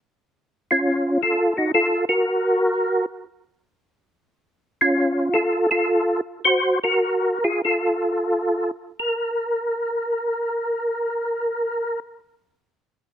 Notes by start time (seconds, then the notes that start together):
0.71 C#4 F4
1.23 F4 A4
1.57 D#4 F#4
1.74 F4 A4
2.09 F#4 A#4
4.81 C#4 F4
5.34 F4 A4
5.71 F4 A4
6.45 F#4 C5
6.84 F#4 A#4
7.44 F4 G#4
7.65 F4 A4
8.99 A#4